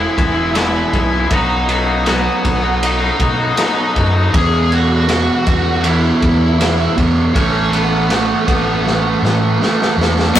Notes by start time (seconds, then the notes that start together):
Already playing: B3 E4 E5
0.00 E3 G#3
0.16 E1 E3 G#3 B3 E4, kick, ride
0.35 E3 G#3 B3 E4
0.54 E2 B2 E3 G#3 B3 E4 E5, snare, ride
0.74 E3 G#3 B3 E4
0.93 B1 E3 G#3 B3 E4, kick, ride
1.11 E3 G#3 B3 E4
1.30 B1 B2 F#3 B3 D#4 F#4 D#5, kick, ride
1.68 F#3 B3 D#4 F#4, ride
1.87 B3 D#4 F#4
2.06 B2 F#3 B3 D#4 F#4 B4, snare, ride
2.44 B1, kick, ride
2.63 B3 D#4 F#4
2.83 D#4 D#5, ride
3.00 B3 D#4 F#4
3.19 B2 F#3 B3 D#4 F#4, kick, ride
3.39 B3 D#4 F#4
3.57 B2 F#3 B3 D#4 F#4, snare, ride
3.62 D#5
3.77 B3 D#4 F#4
3.95 F#2 F#3 B3 D#4 F#4, kick, ride
4.14 B3 D#4 F#4
4.33 E2 B2 E3 G#4 G#5, kick, ride
4.72 F#4 F#5, ride
5.08 E2 B2 E3, snare, ride
5.46 E2 B2 E3, kick, ride
5.84 E2 B2 E3 E4 E5, ride
6.22 E2, kick, ride
6.59 E2 B2 E3, snare, ride
6.96 E2 B2 E3, kick, ride
7.34 A1 A2 E3 A3 C#4 C#5, kick, ride
7.72 B3 B4, ride
8.09 A2 E3 A3, snare, ride
8.46 A1 A2 E3 A3, kick, ride
8.83 A2 E3 A3, snare
9.22 A2, snare
9.60 A2 E3 A3, snare
9.82 snare
9.97 E2 A2 E3 A3
10.02 snare
10.19 snare
10.34 B2 D#3 B3 B4